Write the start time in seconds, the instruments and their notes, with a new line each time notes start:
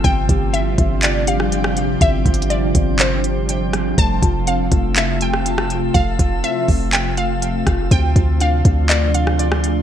Already playing: ambient pad F3, synth texture F4
0.04 808-style bass G1, ambient pad C3 G3 D4, synth keys C4, synth texture C5 G5, synth pluck G5, kick, closed hi-hat
0.29 808-style bass G1, synth keys G4, kick, closed hi-hat
0.54 synth keys F4, synth pluck E5, closed hi-hat
0.78 808-style bass G1, synth keys C4, kick, closed hi-hat
1.03 synth pluck D5, clap, closed hi-hat
1.27 synth keys G4, synth pluck F5, closed hi-hat
1.40 cross-stick
1.52 synth keys G5, closed hi-hat
1.64 cross-stick
1.77 closed hi-hat
2.01 808-style bass G1, synth keys C4, synth pluck E5, kick, closed hi-hat
2.26 808-style bass G1, synth keys G4, kick, closed hi-hat
2.34 closed hi-hat
2.42 closed hi-hat
2.50 synth keys F4, synth pluck D5, closed hi-hat
2.75 808-style bass G1, synth keys C4, kick, closed hi-hat
2.99 synth pluck C5, clap, closed hi-hat
3.24 synth keys G4, closed hi-hat
3.49 synth keys G5, closed hi-hat
3.73 cross-stick, closed hi-hat
3.98 808-style bass F1, synth keys A3, ambient pad A3 F4, synth texture A5 E6, synth pluck A5, kick, closed hi-hat
4.23 808-style bass F1, synth keys F4, kick, closed hi-hat
4.47 synth keys C4, synth pluck F5, closed hi-hat
4.72 808-style bass F1, synth keys A3, kick, closed hi-hat
4.96 synth pluck E5, clap, closed hi-hat
5.21 synth keys F4, synth pluck G5, closed hi-hat
5.34 cross-stick
5.46 synth keys A5, closed hi-hat
5.58 cross-stick
5.70 closed hi-hat
5.94 808-style bass F1, synth keys A3, synth pluck F5, kick, closed hi-hat
6.19 808-style bass F1, synth keys F4, kick, closed hi-hat
6.44 synth keys C4, synth pluck E5, closed hi-hat
6.68 808-style bass F1, synth keys A3, kick, open hi-hat
6.93 synth pluck G5, clap, closed hi-hat
7.17 synth keys F4, synth pluck F5, closed hi-hat
7.42 synth keys F5, closed hi-hat
7.67 808-style bass F1, kick, cross-stick, closed hi-hat
7.91 808-style bass D2, ambient pad F3 A3 D4, synth keys C4, synth texture F4 D5 C6, synth pluck G5, kick, closed hi-hat
8.15 808-style bass D2, synth keys F4, kick, closed hi-hat
8.40 synth keys D4, synth pluck F5, closed hi-hat
8.65 808-style bass D2, synth keys C4, kick, closed hi-hat
8.89 synth pluck D5, clap, closed hi-hat
9.14 synth keys F4, synth pluck F5, closed hi-hat
9.27 cross-stick
9.39 synth keys D5, closed hi-hat
9.52 cross-stick
9.64 closed hi-hat